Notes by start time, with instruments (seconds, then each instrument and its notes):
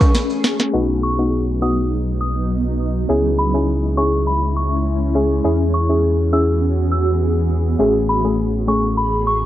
Already playing: ambient pad A3 C#4 G#4
0.01 kick, high timbale, maracas
0.15 snare, closed hi-hat, maracas
0.30 maracas
0.44 snare, maracas
0.60 snare, maracas
0.73 sub bass B1, ambient pad F#3 B3 D#4, synth pluck B3 D#4 F#4
1.03 synth bell C#6
1.19 synth pluck B3 D#4 F#4
1.62 synth pluck B3 D#4 F#4, synth bell D#6
2.21 synth bell D#6
3.09 sub bass C#2, ambient pad G#3 C#4 E4, synth pluck C#4 E4 G#4
3.38 synth bell B5
3.54 synth pluck C#4 E4 G#4
3.97 synth pluck C#4 E4 G#4, synth bell C#6
4.27 synth bell B5
4.56 synth bell C#6
5.15 synth pluck C#4 E4 G#4
5.44 sub bass E2, ambient pad E3 B3 F#4 G#4, synth pluck C#4 E4 G#4
5.74 synth bell C#6
5.89 synth pluck C#4 E4 G#4
6.32 synth pluck C#4 E4 G#4, synth bell E6
6.92 synth bell E6
7.79 sub bass A1, synth pluck A3 C#4 G#4, ambient pad A3 G#4
8.09 synth bell B5
8.24 synth pluck A3 C#4 G#4
8.67 synth pluck A3 C#4 G#4, synth bell C#6
8.97 synth bell B5
9.27 synth bell C#6